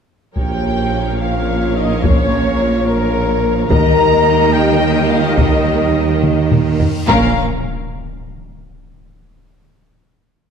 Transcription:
0.36 3.67 A#1 soft
0.36 3.67 A#2 soft
0.36 3.67 F3 soft
0.36 3.66 A#3 soft
0.36 3.66 C#4 medium
0.36 1.17 G4 medium
0.36 3.67 A#4 soft
0.36 3.67 C#5 soft
0.36 3.66 F5 soft
0.36 1.17 G5 medium
0.36 taiko soft
1.20 1.76 F4 medium
1.20 1.76 F5 soft
1.20 1.75 F5 soft
1.75 2.03 D#4 medium
1.75 2.04 D#5 medium
2.02 2.84 C#4 medium
2.02 2.85 C#5 medium
2.02 2.87 C#5 medium
2.02 taiko medium
2.85 3.70 A#3 medium
2.85 3.69 A#4 medium
2.85 3.71 A#4 medium
3.69 6.84 D#2 medium
3.69 6.85 D#3 medium
3.69 6.84 G3 medium
3.69 7.04 A#3 medium
3.69 7.08 D#4 medium
3.69 4.52 A#4 loud
3.69 7.04 A#4 medium
3.69 6.84 A#4 medium
3.69 6.84 D#5 medium
3.69 7.08 G5 medium
3.69 4.52 A#5 medium
3.69 4.54 A#5 medium
3.69 taiko medium
4.52 5.08 G4 medium
4.52 5.10 G5 medium
5.08 5.38 F4 medium
5.08 5.38 F5 medium
5.36 6.23 D#4 medium
5.36 6.21 D#5 medium
5.36 6.23 D#5 medium
5.36 taiko medium
5.36 reverse cymbal soft
6.23 taiko mid medium
6.51 taiko low-mid medium
6.80 taiko low medium
7.08 7.40 A#1 medium
7.08 7.32 A#1 medium
7.08 7.40 A#2 medium
7.08 7.31 A#3 loud
7.08 7.40 A#3 medium
7.08 7.40 C#4 medium
7.08 7.31 A#4 medium
7.08 7.40 A#4 medium
7.08 7.40 F5 medium
7.08 7.39 A#5 medium
7.08 impact medium

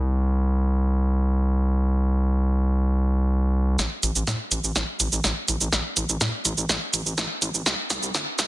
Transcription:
0.00 3.77 C2 medium
3.79 3.87 A1 loud
3.79 snare soft
3.79 shaker medium
4.03 4.11 A1 medium
4.03 closed hi-hat loud
4.03 shaker medium
4.16 4.23 A1 medium
4.16 shaker medium
4.27 4.35 A2 loud
4.27 snare soft
4.27 shaker medium
4.51 4.59 A1 medium
4.51 closed hi-hat loud
4.51 shaker medium
4.64 4.71 A1 medium
4.64 shaker medium
4.76 4.84 A1 loud
4.76 snare soft
4.76 shaker medium
5.00 5.08 A1 medium
5.00 closed hi-hat loud
5.00 shaker medium
5.12 5.20 A1 medium
5.12 shaker medium
5.24 5.32 A1 loud
5.24 snare medium
5.24 shaker medium
5.48 5.56 A1 medium
5.48 closed hi-hat loud
5.48 shaker medium
5.61 5.68 A1 medium
5.61 shaker medium
5.72 5.80 A1 loud
5.72 snare medium
5.72 shaker medium
5.97 6.05 A1 medium
5.97 closed hi-hat loud
5.97 shaker medium
6.09 6.17 A1 medium
6.09 shaker medium
6.21 6.29 A2 medium
6.21 snare medium
6.21 shaker medium
6.45 6.53 A1 medium
6.45 closed hi-hat loud
6.45 shaker medium
6.58 6.65 A1 medium
6.58 shaker medium
6.69 6.77 A1 loud
6.69 snare medium
6.69 shaker medium
6.93 7.01 A1 medium
6.93 closed hi-hat loud
6.93 shaker medium
7.06 7.13 A1 medium
7.06 shaker medium
7.17 7.25 A1 loud
7.17 snare medium
7.17 shaker medium
7.42 7.50 A1 medium
7.42 closed hi-hat loud
7.42 shaker medium
7.54 7.62 A1 medium
7.54 shaker medium
7.66 7.74 C2 loud
7.66 snare medium
7.66 shaker medium
7.90 7.98 C2 loud
7.90 snare medium
7.90 closed hi-hat loud
7.90 shaker medium
8.03 8.10 C2 medium
8.03 shaker medium
8.14 8.22 G1 loud
8.14 snare medium
8.14 shaker medium
8.39 8.46 C2 medium
8.39 snare medium
8.39 closed hi-hat loud
8.39 shaker medium

